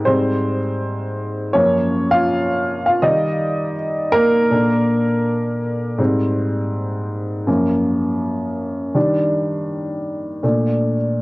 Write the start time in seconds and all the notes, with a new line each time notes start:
0.05 G#2 G3 C4 C5
1.53 F#2 F3 A#3 C#4 C#5
2.11 F4 F5
2.86 F4 F5
3.02 D#3 G3 D#4 D5 D#5
4.12 A#3 A#4
4.50 A#2 D4 A4
5.98 G#2 G3 C4
7.47 F#2 F3 A#3
8.95 D#3 G3 D4
10.43 A#2 A3 D4